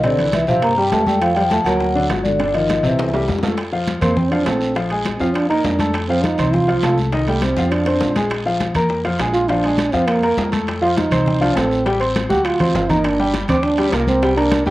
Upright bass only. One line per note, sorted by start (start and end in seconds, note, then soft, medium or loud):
0.00 0.42 C2 medium
0.48 0.89 G2 medium
0.92 1.60 F2 medium
1.65 2.07 D2 medium
2.10 2.78 G1 medium
2.83 3.25 C2 medium
3.29 3.97 F2 medium
4.01 4.43 F2 medium
4.46 5.15 A#1 medium
5.20 5.61 F2 medium
5.64 6.33 F2 medium
6.38 6.80 C2 medium
6.82 7.51 C2 medium
7.56 7.98 F2 medium
8.00 8.69 A#1 medium
8.74 9.16 F2 medium
9.19 9.88 A#1 medium
9.93 10.35 F2 medium
10.37 11.06 F2 medium
11.11 11.52 C2 medium
11.56 12.25 A1 medium
12.30 12.71 D2 medium
12.74 13.43 G1 medium
13.48 13.89 D2 medium
13.92 14.61 C2 medium
14.66 14.70 G2 loud